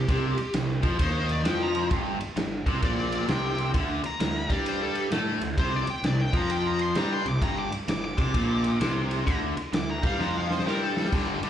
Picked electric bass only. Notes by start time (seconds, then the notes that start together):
0.08 C2
0.39 muted picked electric bass stroke
0.54 C2
0.83 F2
0.99 D#2
1.45 F2
1.91 G1
2.20 muted picked electric bass stroke
2.36 G1
2.66 C2
2.83 A#1
3.28 C2
3.74 D2
4.05 muted picked electric bass stroke
4.20 D2
4.50 G2
5.11 A2
5.41 D2
5.57 C2
5.87 muted picked electric bass stroke
6.03 C2
6.33 F2
6.95 G2
7.26 C2
7.41 G1
7.72 muted picked electric bass stroke
7.88 G1
8.17 C2
8.34 A#1
8.80 C2
9.27 D2
9.56 muted picked electric bass stroke
9.73 D2
10.03 G2
10.18 F2
10.65 G2
11.12 G1
11.42 G1